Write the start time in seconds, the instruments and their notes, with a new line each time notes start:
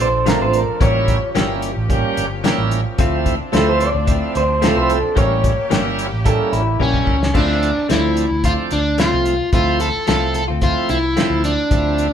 Already playing: horn section F3 D4 A4
0.00 fingered electric bass A#1, clean electric guitar C5
0.26 clean electric guitar F3 A3 D4 F4 A#4, tonewheel organ F3 A3 C4 D4, snare, closed hi-hat
0.41 fingered electric bass A1, clean electric guitar C5
0.54 clean electric guitar A#4, closed hi-hat
0.68 muted fingered electric bass stroke
0.80 fingered electric bass A1, clean electric guitar E3 A#3 C#4 G4 C#5, tonewheel organ G3 A#3 C#4 E4, horn section C#4 G4, kick, closed hi-hat
1.08 kick, closed hi-hat
1.35 fingered electric bass G1, clean electric guitar E3 A#3 C#4 G4, tonewheel organ G3 A#3 C#4 E4, snare, closed hi-hat
1.62 closed hi-hat
1.77 fingered electric bass A1
1.89 tonewheel organ G3 A#3 C#4 G4, kick, closed hi-hat
2.17 fingered electric bass G1, closed hi-hat
2.44 clean electric guitar E3 A#3 C#4 G4, tonewheel organ G3 A#3 C#4 E4, snare, closed hi-hat
2.58 fingered electric bass A1
2.71 closed hi-hat
2.98 fingered electric bass D2, tonewheel organ F3 A3 C4 E4, horn section F3 C4 D4, clean electric guitar A3 C4 F4, kick, closed hi-hat
3.26 kick, closed hi-hat
3.40 muted fingered electric bass stroke
3.52 fingered electric bass D2, tonewheel organ F3 A3 C4 E4, clean electric guitar A3 C4 F4 A4, snare, closed hi-hat
3.69 clean electric guitar C5
3.81 clean electric guitar D5, closed hi-hat
3.95 fingered electric bass D2
4.06 tonewheel organ F3 A3 C4 E4, kick, closed hi-hat
4.35 fingered electric bass D2, clean electric guitar C5, closed hi-hat
4.61 tonewheel organ F3 A3 C4 E4, clean electric guitar A3 C4 F4 A4, snare, closed hi-hat
4.77 fingered electric bass C2, clean electric guitar C5
4.90 clean electric guitar A4, closed hi-hat
5.04 muted fingered electric bass stroke
5.15 fingered electric bass A1, clean electric guitar E3 A#3 C#4 G4 C#5, tonewheel organ G3 A#3 C#4 E4, horn section A#3 C#4 G4, kick, closed hi-hat
5.44 kick, closed hi-hat
5.58 muted fingered electric bass stroke
5.69 fingered electric bass G1, clean electric guitar E3 A#3 C#4 G4, tonewheel organ G3 A#3 C#4 E4, snare, closed hi-hat
5.99 closed hi-hat
6.12 fingered electric bass A1
6.24 tonewheel organ G3 A#3 C#4 E4, clean electric guitar A4, kick, closed hi-hat
6.53 fingered electric bass A1, clean electric guitar E4, closed hi-hat
6.79 fingered electric bass A#1, clean electric guitar E3 A#3 C#4 G4, tonewheel organ G3 A#3 C#4 E4, overdriven electric guitar C#4, kick
6.94 kick
7.07 fingered electric bass C#2, kick
7.23 snare
7.34 fingered electric bass D2, tonewheel organ F3 A3 C4 E4, clean electric guitar A3 C4 F4, overdriven electric guitar D4, kick, crash
7.63 closed hi-hat
7.89 fingered electric bass D2, tonewheel organ F3 A3 C4 D4, clean electric guitar A3 C4 F4, overdriven electric guitar E4, snare, closed hi-hat
8.17 closed hi-hat
8.31 fingered electric bass D2
8.44 tonewheel organ F3 A3 C4 D4, overdriven electric guitar F4, kick, closed hi-hat
8.71 fingered electric bass D2, overdriven electric guitar D4, closed hi-hat
8.98 tonewheel organ F3 A3 C4 F4, clean electric guitar A3 C4 F4, overdriven electric guitar F4, snare, closed hi-hat
9.13 fingered electric bass C2
9.26 closed hi-hat
9.40 muted fingered electric bass stroke
9.52 fingered electric bass D2, tonewheel organ F3 A3 C4 E4, overdriven electric guitar F4, kick, closed hi-hat
9.80 overdriven electric guitar A4, closed hi-hat
9.95 muted fingered electric bass stroke
10.06 fingered electric bass C2, tonewheel organ F3 A3 C4 E4, clean electric guitar A3 C4 F4, overdriven electric guitar A4, snare, closed hi-hat
10.34 overdriven electric guitar A4, closed hi-hat
10.48 fingered electric bass D2, clean electric guitar C4 F4
10.61 tonewheel organ F3 A3 C4 E4, overdriven electric guitar F4, kick, closed hi-hat
10.89 fingered electric bass C2, overdriven electric guitar E4, closed hi-hat
11.16 tonewheel organ F3 A3 C4 E4, clean electric guitar A3 C4 F4, snare, closed hi-hat
11.30 fingered electric bass D2
11.44 overdriven electric guitar D4, closed hi-hat
11.71 fingered electric bass D2, tonewheel organ F3 A3 C4 E4, kick, closed hi-hat
11.98 closed hi-hat